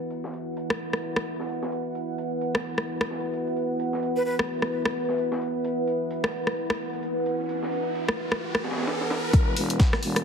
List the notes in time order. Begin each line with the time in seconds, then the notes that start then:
Already playing: E4 B4 F#5
0.10 closed hi-hat
0.24 snare
0.34 closed hi-hat
0.57 closed hi-hat
0.70 cross-stick
0.80 closed hi-hat
0.93 cross-stick
1.03 closed hi-hat
1.16 cross-stick
1.26 closed hi-hat
1.40 snare
1.49 closed hi-hat
1.63 snare
1.72 closed hi-hat
1.95 closed hi-hat
2.18 closed hi-hat
2.41 closed hi-hat
2.55 cross-stick, snare
2.64 closed hi-hat
2.78 cross-stick
2.87 closed hi-hat
3.01 cross-stick
3.10 snare, closed hi-hat
3.34 closed hi-hat
3.47 closed hi-hat
3.57 closed hi-hat
3.80 closed hi-hat
3.93 snare
4.03 closed hi-hat
4.16 B4
4.26 B4, closed hi-hat
4.39 cross-stick
4.49 closed hi-hat
4.62 cross-stick
4.72 closed hi-hat
4.85 cross-stick
4.95 closed hi-hat
5.09 snare
5.18 closed hi-hat
5.32 snare
5.41 closed hi-hat
5.64 closed hi-hat, riser
5.87 closed hi-hat
6.11 closed hi-hat
6.24 cross-stick, snare
6.34 closed hi-hat
6.47 cross-stick
6.57 closed hi-hat
6.70 cross-stick
6.93 closed hi-hat
7.03 closed hi-hat
7.26 closed hi-hat
7.49 closed hi-hat
7.63 snare
7.72 closed hi-hat
7.95 closed hi-hat
8.09 cross-stick
8.18 closed hi-hat
8.32 cross-stick
8.41 closed hi-hat
8.55 cross-stick
8.64 snare, closed hi-hat
8.71 snare, closed hi-hat
8.78 snare, closed hi-hat
8.83 snare, closed hi-hat
8.87 snare, closed hi-hat
9.01 snare
9.10 snare, closed hi-hat
9.33 E1, kick, closed hi-hat
9.56 E1, closed hi-hat, open hi-hat
9.70 closed hi-hat
9.80 kick, snare, closed hi-hat
9.93 cross-stick, snare
10.03 E1, closed hi-hat, open hi-hat
10.16 cross-stick, closed hi-hat